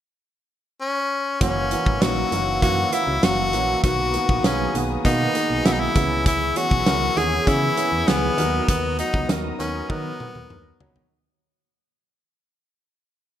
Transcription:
0.81 tenor saxophone C#4
1.40 fm bass F#1, grand piano E3 A#3 C#4 F#4, tenor saxophone C#4, analog synth pad F#4 C#5 A#5 E6, kick, closed hi-hat
1.71 grand piano E3 A#3 C#4 F#4, closed hi-hat
1.86 fm bass G#1, kick
2.02 fm bass A#1, grand piano E3 A#3 C#4 D#4, tenor saxophone F#4, snare, closed hi-hat
2.32 fm bass F#1, grand piano E3 A#3 C#4 F#4, closed hi-hat
2.62 fm bass F#2, grand piano E3 A#3 C#4 F#4, tenor saxophone F#4, kick, closed hi-hat
2.92 grand piano E3 A#3 C#4 F#4, tenor saxophone E4, closed hi-hat
3.07 fm bass C#2
3.22 fm bass F#1, grand piano E3 A#3 C#4 F#4, tenor saxophone F#4, snare, closed hi-hat
3.53 fm bass A#1, grand piano E3 A#3 C#4 F#4, closed hi-hat
3.84 fm bass B1, grand piano D#3 A#3 B3 F#4, tenor saxophone F#4, analog synth pad B4 D#6, kick, closed hi-hat
4.14 grand piano D#3 A#3 B3 F#4, closed hi-hat
4.29 fm bass A#1, kick
4.44 fm bass B1, grand piano D#3 A#3 B3 G#4, tenor saxophone C#4, snare, closed hi-hat
4.74 fm bass B1, grand piano D#3 A#3 B3 F#4, closed hi-hat
5.04 fm bass B2, grand piano D#3 A#3 B3 F#4, tenor saxophone D#4, kick, closed hi-hat
5.34 grand piano D#3 A#3 B3 G#4, closed hi-hat
5.50 fm bass B1
5.65 fm bass B1, grand piano D#3 A#3 B3 F#4, tenor saxophone E4, snare, closed hi-hat
5.73 tenor saxophone D#4
5.80 tenor saxophone E4
5.95 fm bass C#2, grand piano E3 B3 C#4 G#4, analog synth pad G#4 C#5 B5 E6, kick, closed hi-hat
6.26 tenor saxophone E4, kick, closed hi-hat
6.56 grand piano E3 B3 C#4 G#4, tenor saxophone F#4, closed hi-hat
6.71 fm bass B1, kick
6.86 fm bass C#2, grand piano E3 B3 C#4 A#4, snare, closed hi-hat
7.16 fm bass D#2, grand piano E3 B3 C#4 G#4, tenor saxophone G#4, closed hi-hat
7.46 fm bass C#3, grand piano E3 B3 C#4 G#4, tenor saxophone E4, kick, closed hi-hat
7.77 grand piano E3 B3 C#4 G#4, closed hi-hat
7.92 fm bass E2
8.07 fm bass C#2, grand piano E3 B3 C#4 G#4, tenor saxophone B3, snare, closed hi-hat
8.37 fm bass D#2, grand piano F#3 B3 D#4 A#4, analog synth pad B3 F#4 A#5 D#6, closed hi-hat
8.68 fm bass D#2, tenor saxophone B3, kick, closed hi-hat
8.98 grand piano F#3 B3 D#4 F#4, tenor saxophone D#4, closed hi-hat
9.14 fm bass C#2, kick
9.29 fm bass D#2, grand piano F#3 B3 D#4 A#4, snare, closed hi-hat
9.59 fm bass D#2, grand piano F#3 B3 D#4 A#4, tenor saxophone C#4, closed hi-hat
9.89 fm bass D#3, grand piano F#3 B3 D#4 A#4, tenor saxophone B3, kick, high tom
10.20 grand piano F#3 B3 D#4 A#4, mid tom
10.35 fm bass D#2, mid tom
10.50 fm bass D#2, grand piano F#3 B3 D#4 A#4, mid tom
10.80 fm bass C#2, grand piano F#3 B3 D#4 C#5, floor tom
10.96 floor tom

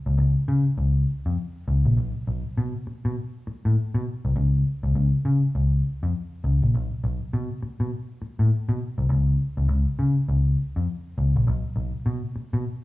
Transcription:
0.06 picked electric bass C#2
0.18 picked electric bass C#2
0.48 picked electric bass C#3
0.78 picked electric bass C#2
1.26 picked electric bass F2
1.68 picked electric bass C#2
1.85 picked electric bass A#1
1.97 picked electric bass B1
2.27 picked electric bass B1
2.58 picked electric bass B2
2.87 muted picked electric bass stroke
3.05 picked electric bass B2
3.47 muted picked electric bass stroke
3.65 picked electric bass A2
3.94 picked electric bass B2
4.25 picked electric bass C2
4.36 picked electric bass C#2
4.83 picked electric bass C#2
4.95 picked electric bass C#2
5.25 picked electric bass C#3
5.55 picked electric bass C#2
6.03 picked electric bass F2
6.44 picked electric bass C#2
6.62 picked electric bass A#1
6.74 picked electric bass B1
7.04 picked electric bass B1
7.33 picked electric bass B2
7.63 muted picked electric bass stroke
7.80 picked electric bass B2
8.22 muted picked electric bass stroke
8.39 picked electric bass A2
8.69 picked electric bass B2
8.98 picked electric bass C2
9.09 picked electric bass C#2
9.57 picked electric bass C#2
9.69 picked electric bass C#2
9.99 picked electric bass C#3
10.28 picked electric bass C#2
10.76 picked electric bass F2
11.18 picked electric bass C#2
11.36 picked electric bass A#1
11.47 picked electric bass B1
11.76 picked electric bass B1
12.06 picked electric bass B2
12.36 muted picked electric bass stroke
12.53 picked electric bass B2

